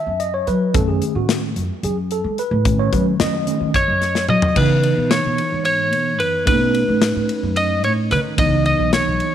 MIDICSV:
0, 0, Header, 1, 5, 480
1, 0, Start_track
1, 0, Tempo, 545455
1, 655, Time_signature, 7, 3, 24, 8
1, 8227, End_track
2, 0, Start_track
2, 0, Title_t, "Lead electric guitar"
2, 0, Program_c, 0, 29
2, 3306, Note_on_c, 0, 73, 90
2, 3747, Note_off_c, 0, 73, 0
2, 3783, Note_on_c, 0, 75, 86
2, 4025, Note_off_c, 0, 75, 0
2, 4025, Note_on_c, 0, 71, 68
2, 4497, Note_on_c, 0, 73, 74
2, 4514, Note_off_c, 0, 71, 0
2, 4965, Note_off_c, 0, 73, 0
2, 4976, Note_on_c, 0, 73, 76
2, 5455, Note_on_c, 0, 71, 84
2, 5470, Note_off_c, 0, 73, 0
2, 5687, Note_off_c, 0, 71, 0
2, 5698, Note_on_c, 0, 71, 81
2, 6663, Note_on_c, 0, 75, 94
2, 6686, Note_off_c, 0, 71, 0
2, 6883, Note_off_c, 0, 75, 0
2, 6903, Note_on_c, 0, 73, 90
2, 6967, Note_off_c, 0, 73, 0
2, 7149, Note_on_c, 0, 71, 89
2, 7212, Note_off_c, 0, 71, 0
2, 7385, Note_on_c, 0, 75, 95
2, 7610, Note_off_c, 0, 75, 0
2, 7621, Note_on_c, 0, 75, 95
2, 7861, Note_off_c, 0, 75, 0
2, 7864, Note_on_c, 0, 73, 83
2, 8227, Note_off_c, 0, 73, 0
2, 8227, End_track
3, 0, Start_track
3, 0, Title_t, "Tine electric piano"
3, 0, Program_c, 1, 4
3, 0, Note_on_c, 1, 76, 105
3, 176, Note_on_c, 1, 75, 99
3, 183, Note_off_c, 1, 76, 0
3, 287, Note_off_c, 1, 75, 0
3, 300, Note_on_c, 1, 73, 95
3, 419, Note_on_c, 1, 71, 93
3, 421, Note_off_c, 1, 73, 0
3, 649, Note_on_c, 1, 51, 52
3, 654, Note_on_c, 1, 57, 53
3, 655, Note_on_c, 1, 69, 89
3, 661, Note_on_c, 1, 61, 58
3, 664, Note_off_c, 1, 71, 0
3, 774, Note_on_c, 1, 68, 80
3, 778, Note_off_c, 1, 69, 0
3, 1021, Note_off_c, 1, 68, 0
3, 1021, Note_on_c, 1, 66, 78
3, 1241, Note_off_c, 1, 66, 0
3, 1336, Note_off_c, 1, 51, 0
3, 1339, Note_off_c, 1, 57, 0
3, 1342, Note_off_c, 1, 61, 0
3, 1622, Note_on_c, 1, 68, 81
3, 1729, Note_off_c, 1, 68, 0
3, 1864, Note_on_c, 1, 69, 91
3, 2105, Note_on_c, 1, 71, 92
3, 2106, Note_off_c, 1, 69, 0
3, 2332, Note_on_c, 1, 51, 52
3, 2338, Note_on_c, 1, 57, 55
3, 2342, Note_on_c, 1, 61, 63
3, 2459, Note_on_c, 1, 73, 95
3, 2470, Note_off_c, 1, 71, 0
3, 2579, Note_on_c, 1, 71, 86
3, 2580, Note_off_c, 1, 73, 0
3, 2686, Note_off_c, 1, 71, 0
3, 2816, Note_on_c, 1, 75, 106
3, 3017, Note_off_c, 1, 51, 0
3, 3020, Note_off_c, 1, 57, 0
3, 3023, Note_off_c, 1, 61, 0
3, 3050, Note_on_c, 1, 51, 48
3, 3052, Note_on_c, 1, 57, 46
3, 3055, Note_on_c, 1, 61, 57
3, 3268, Note_off_c, 1, 51, 0
3, 3269, Note_off_c, 1, 57, 0
3, 3271, Note_off_c, 1, 61, 0
3, 3980, Note_off_c, 1, 75, 0
3, 4001, Note_on_c, 1, 52, 65
3, 4016, Note_on_c, 1, 59, 55
3, 4028, Note_on_c, 1, 63, 66
3, 5655, Note_off_c, 1, 52, 0
3, 5662, Note_off_c, 1, 59, 0
3, 5668, Note_off_c, 1, 63, 0
3, 5681, Note_on_c, 1, 57, 69
3, 5692, Note_on_c, 1, 61, 62
3, 5706, Note_on_c, 1, 63, 69
3, 7336, Note_off_c, 1, 57, 0
3, 7341, Note_off_c, 1, 61, 0
3, 7349, Note_off_c, 1, 63, 0
3, 7364, Note_on_c, 1, 52, 65
3, 7376, Note_on_c, 1, 59, 58
3, 7391, Note_on_c, 1, 63, 74
3, 8227, Note_off_c, 1, 52, 0
3, 8227, Note_off_c, 1, 59, 0
3, 8227, Note_off_c, 1, 63, 0
3, 8227, End_track
4, 0, Start_track
4, 0, Title_t, "Upright bass"
4, 0, Program_c, 2, 32
4, 56, Note_on_c, 2, 42, 79
4, 383, Note_off_c, 2, 42, 0
4, 417, Note_on_c, 2, 54, 92
4, 634, Note_off_c, 2, 54, 0
4, 658, Note_on_c, 2, 42, 88
4, 875, Note_off_c, 2, 42, 0
4, 1014, Note_on_c, 2, 45, 81
4, 1342, Note_off_c, 2, 45, 0
4, 1373, Note_on_c, 2, 42, 79
4, 1483, Note_off_c, 2, 42, 0
4, 1612, Note_on_c, 2, 42, 84
4, 1940, Note_off_c, 2, 42, 0
4, 1973, Note_on_c, 2, 56, 85
4, 2083, Note_off_c, 2, 56, 0
4, 2210, Note_on_c, 2, 45, 92
4, 2539, Note_off_c, 2, 45, 0
4, 2574, Note_on_c, 2, 42, 107
4, 2792, Note_off_c, 2, 42, 0
4, 2813, Note_on_c, 2, 42, 96
4, 3032, Note_off_c, 2, 42, 0
4, 3173, Note_on_c, 2, 51, 82
4, 3392, Note_off_c, 2, 51, 0
4, 3414, Note_on_c, 2, 42, 80
4, 3741, Note_off_c, 2, 42, 0
4, 3770, Note_on_c, 2, 54, 94
4, 3990, Note_off_c, 2, 54, 0
4, 4015, Note_on_c, 2, 49, 99
4, 4342, Note_off_c, 2, 49, 0
4, 4376, Note_on_c, 2, 47, 81
4, 4594, Note_off_c, 2, 47, 0
4, 4620, Note_on_c, 2, 47, 84
4, 4726, Note_off_c, 2, 47, 0
4, 4860, Note_on_c, 2, 44, 77
4, 5218, Note_off_c, 2, 44, 0
4, 5218, Note_on_c, 2, 47, 92
4, 5458, Note_off_c, 2, 47, 0
4, 5458, Note_on_c, 2, 42, 100
4, 5696, Note_on_c, 2, 47, 99
4, 5709, Note_off_c, 2, 42, 0
4, 6023, Note_off_c, 2, 47, 0
4, 6057, Note_on_c, 2, 45, 83
4, 6275, Note_off_c, 2, 45, 0
4, 6300, Note_on_c, 2, 45, 80
4, 6407, Note_off_c, 2, 45, 0
4, 6540, Note_on_c, 2, 42, 85
4, 6898, Note_off_c, 2, 42, 0
4, 6898, Note_on_c, 2, 45, 99
4, 7141, Note_on_c, 2, 51, 96
4, 7154, Note_off_c, 2, 45, 0
4, 7374, Note_on_c, 2, 37, 96
4, 7388, Note_off_c, 2, 51, 0
4, 7703, Note_off_c, 2, 37, 0
4, 7734, Note_on_c, 2, 35, 85
4, 7954, Note_off_c, 2, 35, 0
4, 7974, Note_on_c, 2, 35, 81
4, 8085, Note_off_c, 2, 35, 0
4, 8227, End_track
5, 0, Start_track
5, 0, Title_t, "Drums"
5, 175, Note_on_c, 9, 42, 58
5, 263, Note_off_c, 9, 42, 0
5, 415, Note_on_c, 9, 42, 53
5, 503, Note_off_c, 9, 42, 0
5, 655, Note_on_c, 9, 42, 86
5, 656, Note_on_c, 9, 36, 116
5, 743, Note_off_c, 9, 42, 0
5, 744, Note_off_c, 9, 36, 0
5, 895, Note_on_c, 9, 42, 64
5, 983, Note_off_c, 9, 42, 0
5, 1134, Note_on_c, 9, 38, 102
5, 1134, Note_on_c, 9, 42, 78
5, 1222, Note_off_c, 9, 38, 0
5, 1222, Note_off_c, 9, 42, 0
5, 1375, Note_on_c, 9, 42, 66
5, 1463, Note_off_c, 9, 42, 0
5, 1615, Note_on_c, 9, 42, 76
5, 1703, Note_off_c, 9, 42, 0
5, 1854, Note_on_c, 9, 42, 63
5, 1942, Note_off_c, 9, 42, 0
5, 2096, Note_on_c, 9, 42, 62
5, 2184, Note_off_c, 9, 42, 0
5, 2334, Note_on_c, 9, 42, 86
5, 2335, Note_on_c, 9, 36, 114
5, 2422, Note_off_c, 9, 42, 0
5, 2423, Note_off_c, 9, 36, 0
5, 2575, Note_on_c, 9, 36, 72
5, 2576, Note_on_c, 9, 42, 62
5, 2663, Note_off_c, 9, 36, 0
5, 2664, Note_off_c, 9, 42, 0
5, 2814, Note_on_c, 9, 38, 110
5, 2814, Note_on_c, 9, 42, 88
5, 2902, Note_off_c, 9, 38, 0
5, 2902, Note_off_c, 9, 42, 0
5, 3054, Note_on_c, 9, 42, 66
5, 3142, Note_off_c, 9, 42, 0
5, 3294, Note_on_c, 9, 36, 88
5, 3295, Note_on_c, 9, 38, 28
5, 3295, Note_on_c, 9, 42, 71
5, 3382, Note_off_c, 9, 36, 0
5, 3383, Note_off_c, 9, 38, 0
5, 3383, Note_off_c, 9, 42, 0
5, 3534, Note_on_c, 9, 38, 33
5, 3534, Note_on_c, 9, 42, 55
5, 3622, Note_off_c, 9, 38, 0
5, 3622, Note_off_c, 9, 42, 0
5, 3654, Note_on_c, 9, 38, 63
5, 3742, Note_off_c, 9, 38, 0
5, 3771, Note_on_c, 9, 47, 78
5, 3859, Note_off_c, 9, 47, 0
5, 3892, Note_on_c, 9, 43, 109
5, 3980, Note_off_c, 9, 43, 0
5, 4013, Note_on_c, 9, 49, 103
5, 4014, Note_on_c, 9, 36, 109
5, 4101, Note_off_c, 9, 49, 0
5, 4102, Note_off_c, 9, 36, 0
5, 4254, Note_on_c, 9, 51, 57
5, 4342, Note_off_c, 9, 51, 0
5, 4495, Note_on_c, 9, 38, 112
5, 4495, Note_on_c, 9, 51, 72
5, 4583, Note_off_c, 9, 38, 0
5, 4583, Note_off_c, 9, 51, 0
5, 4736, Note_on_c, 9, 51, 62
5, 4824, Note_off_c, 9, 51, 0
5, 4972, Note_on_c, 9, 51, 75
5, 5060, Note_off_c, 9, 51, 0
5, 5215, Note_on_c, 9, 51, 62
5, 5303, Note_off_c, 9, 51, 0
5, 5454, Note_on_c, 9, 51, 64
5, 5542, Note_off_c, 9, 51, 0
5, 5694, Note_on_c, 9, 36, 106
5, 5694, Note_on_c, 9, 51, 92
5, 5782, Note_off_c, 9, 36, 0
5, 5782, Note_off_c, 9, 51, 0
5, 5935, Note_on_c, 9, 51, 65
5, 6023, Note_off_c, 9, 51, 0
5, 6174, Note_on_c, 9, 38, 105
5, 6174, Note_on_c, 9, 51, 80
5, 6262, Note_off_c, 9, 38, 0
5, 6262, Note_off_c, 9, 51, 0
5, 6415, Note_on_c, 9, 51, 68
5, 6503, Note_off_c, 9, 51, 0
5, 6656, Note_on_c, 9, 51, 71
5, 6744, Note_off_c, 9, 51, 0
5, 6896, Note_on_c, 9, 51, 53
5, 6984, Note_off_c, 9, 51, 0
5, 7137, Note_on_c, 9, 38, 33
5, 7137, Note_on_c, 9, 51, 58
5, 7225, Note_off_c, 9, 38, 0
5, 7225, Note_off_c, 9, 51, 0
5, 7376, Note_on_c, 9, 36, 120
5, 7376, Note_on_c, 9, 51, 87
5, 7464, Note_off_c, 9, 36, 0
5, 7464, Note_off_c, 9, 51, 0
5, 7617, Note_on_c, 9, 51, 55
5, 7705, Note_off_c, 9, 51, 0
5, 7857, Note_on_c, 9, 38, 101
5, 7857, Note_on_c, 9, 51, 74
5, 7945, Note_off_c, 9, 38, 0
5, 7945, Note_off_c, 9, 51, 0
5, 8096, Note_on_c, 9, 51, 57
5, 8184, Note_off_c, 9, 51, 0
5, 8227, End_track
0, 0, End_of_file